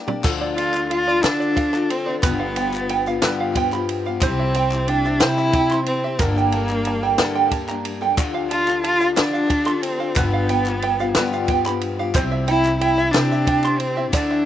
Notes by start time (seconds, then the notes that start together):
Already playing: G5 A#5
0.07 G3 A#3 D4 G4 D5, floor tom
0.23 D2 D3 F3 D4 F4 A4, kick, clap, crash, shaker
0.41 D5
0.57 F3 D4 F4 A4 F5, ride, shaker
0.74 D4 F4 A4, clap, shaker
0.90 F4 F5, ride
1.07 D4 F4 A4 D5, shaker
1.23 D3 F3 D4 F4 A4, snare, clap, ride, shaker
1.40 D5, shaker
1.56 F3 D4 F4 A4 F5, kick, clap, ride
1.73 D4 F4 A4 A5, clap, shaker
1.90 C4, ride
2.06 D4 F4 A4 D5
2.23 G1 G2 D3 F3 G3 B3 F4 G4 B4, kick, clap, ride, shaker
2.39 F5
2.56 F3 B3 F4 G4 G5, ride, shaker
2.73 F3 B3 F4 G4, clap, shaker
2.89 G5, ride
3.06 F3 B3 F4 G4 F5, shaker
3.22 G2 D3 F3 B3 F4 G4 B4, snare, clap, ride, shaker
3.40 F5
3.55 F3 B3 F4 G4 G5, kick, ride
3.72 F3 B3 F4 G4 B5, clap, shaker
3.89 ride
4.05 F3 B3 F4 G4 F5
4.21 C2 C3 G3 C4 E4 G4 C5, kick, clap, ride, shaker
4.39 E5
4.54 G3 C4 E4 G4 G5, ride, shaker
4.71 C4 E4 G4, clap, shaker
4.88 D4 G5, ride
5.05 C4 E4 G4 E5, shaker
5.20 C3 G3 C4 E4 G4 C5, snare, clap, ride, shaker
5.38 E5, shaker
5.53 G3 C4 E4 G4 G5, kick, clap, ride
5.70 C4 E4 G4 C6, clap, shaker
5.86 C4, ride
6.04 C4 E4 G4 E5
6.19 G1 G2 D3 G3 A#3 D4 G4 A4 A#4, kick, clap, ride, shaker
6.36 G5, clap, shaker
6.52 G3 A#3 D4 A4 A5, ride
6.69 G3 A#3 D4 A4, clap
6.85 A5, clap, ride
7.03 G3 A#3 D4 A4 G5
7.18 G2 D3 G3 A#3 D4 A4 A#4, snare, clap, ride, shaker
7.35 G5, clap
7.51 G3 A#3 D4 A4 A5, kick, ride, shaker
7.69 G3 A#3 D4 A#5, clap, shaker
7.85 ride
8.01 G3 A#3 D4 A4 G5, clap
8.17 D2 D3 F3 D4 F4 A4 D5, kick, clap, ride, shaker
8.34 F5
8.50 F3 D4 F4 A4 A5, ride, shaker
8.67 D4 F4 A4, clap, shaker
8.84 F4 A5, ride
9.00 D4 F4 A4 F5, shaker
9.16 D3 F3 D4 F4 A4 D5, snare, clap, ride, shaker
9.33 F5, shaker
9.49 F3 D4 F4 A4 A5, kick, clap, ride
9.66 D4 F4 A4 C6, clap, shaker
9.83 C4, ride
9.99 D4 F4 A4 F5
10.16 G1 G2 D3 F3 G3 B3 F4 G4 B4, kick, clap, ride, shaker
10.33 F5
10.49 F3 B3 F4 G4 G5, ride, shaker
10.66 F3 B3 F4 G4, clap, shaker
10.82 G5, ride
10.99 F3 B3 F4 G4 F5, shaker
11.15 G2 D3 F3 B3 B4, snare, clap, ride, shaker
11.19 F4 G4
11.32 F5, shaker
11.48 F3 B3 F4 G5, kick, clap, ride
11.53 G4
11.66 F3 B3 F4 G4 B5, clap, shaker
11.81 ride
11.99 F3 B3 F4 G4 F5
12.14 C2 C3 G3 C4 E4 G4 C5, kick, clap, ride, shaker
12.32 E5
12.48 G3 C4 E4 G4 G5, ride, shaker
12.65 C4 E4 G4, clap, shaker
12.81 E4 G5, ride
12.98 C4 E4 G4 E5, shaker
13.12 C3 G3 C4 D4 C5, snare, clap, ride, shaker
13.16 E4 G4
13.32 E5, shaker
13.47 G3 C4 E4 G4 G5, kick, clap, ride
13.64 C4 E4 G4 C6, clap, shaker
13.78 C4, ride
13.96 C4 E4 G4 E5
14.12 D2 D3 A3 D4 E4 A4 D5, kick, clap, ride, shaker
14.31 E5, clap